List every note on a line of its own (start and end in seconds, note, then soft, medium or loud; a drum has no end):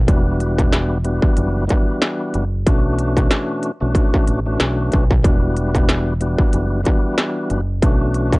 0.07 1.19 E1 loud
0.07 0.98 E3 medium
0.07 0.98 G3 medium
0.07 0.98 B3 medium
0.07 0.98 D4 medium
0.07 0.98 F#4 loud
0.07 kick loud
0.07 closed hi-hat medium
0.40 closed hi-hat medium
0.58 kick loud
0.58 closed hi-hat medium
0.72 snare loud
0.72 closed hi-hat loud
1.04 1.65 E3 medium
1.04 1.65 G3 medium
1.04 1.65 B3 medium
1.04 1.65 D4 medium
1.04 1.65 F#4 loud
1.04 closed hi-hat medium
1.23 kick loud
1.37 1.67 F#1 loud
1.37 closed hi-hat medium
1.67 2.44 E3 medium
1.67 2.44 G3 medium
1.67 2.44 B3 medium
1.67 2.44 D4 medium
1.67 2.45 F#4 loud
1.67 kick loud
1.67 closed hi-hat medium
2.02 snare loud
2.02 closed hi-hat medium
2.34 2.64 F#1 medium
2.34 closed hi-hat medium
2.66 3.27 B1 loud
2.66 3.71 B2 medium
2.66 3.71 E3 medium
2.66 3.71 A3 medium
2.66 3.71 C#4 medium
2.66 3.72 D4 medium
2.66 3.72 F#4 loud
2.66 kick loud
2.66 closed hi-hat medium
2.98 closed hi-hat medium
3.17 kick loud
3.17 closed hi-hat medium
3.31 snare loud
3.31 closed hi-hat loud
3.63 closed hi-hat medium
3.80 3.94 B1 medium
3.80 4.39 B2 medium
3.80 4.40 E3 medium
3.80 4.40 A3 medium
3.80 4.40 C#4 medium
3.80 4.40 D4 medium
3.80 4.40 F#4 loud
3.95 kick loud
3.95 closed hi-hat medium
4.14 kick medium
4.27 4.57 A1 loud
4.27 closed hi-hat medium
4.46 5.04 B2 loud
4.46 5.05 E3 medium
4.46 5.05 A3 medium
4.46 5.05 C#4 medium
4.46 5.05 D4 medium
4.46 5.05 F#4 loud
4.60 4.89 B1 loud
4.60 snare loud
4.60 closed hi-hat medium
4.92 5.22 B1 medium
4.92 kick loud
4.92 closed hi-hat medium
5.11 kick loud
5.23 6.35 E1 loud
5.23 6.14 E3 loud
5.23 6.14 G3 medium
5.23 6.14 B3 medium
5.23 6.14 D4 medium
5.23 6.14 F#4 loud
5.23 kick loud
5.23 closed hi-hat medium
5.57 closed hi-hat medium
5.75 kick medium
5.75 closed hi-hat medium
5.89 snare loud
5.89 closed hi-hat loud
6.21 6.81 E3 medium
6.21 6.81 G3 medium
6.21 6.81 B3 medium
6.21 6.81 D4 medium
6.21 6.82 F#4 loud
6.21 closed hi-hat medium
6.39 kick loud
6.53 6.83 F#1 loud
6.53 closed hi-hat medium
6.84 7.60 E3 medium
6.84 7.60 G3 medium
6.84 7.60 B3 medium
6.84 7.61 D4 loud
6.84 7.61 F#4 loud
6.84 kick medium
6.84 closed hi-hat medium
7.18 snare loud
7.18 closed hi-hat medium
7.50 7.80 F#1 loud
7.50 closed hi-hat medium
7.82 8.39 B1 loud
7.82 8.39 B2 medium
7.82 8.39 E3 medium
7.82 8.39 A3 medium
7.82 8.39 C#4 medium
7.82 8.39 D4 medium
7.82 8.39 F#4 loud
7.82 kick loud
7.82 closed hi-hat medium
8.14 closed hi-hat medium
8.33 kick loud
8.33 closed hi-hat medium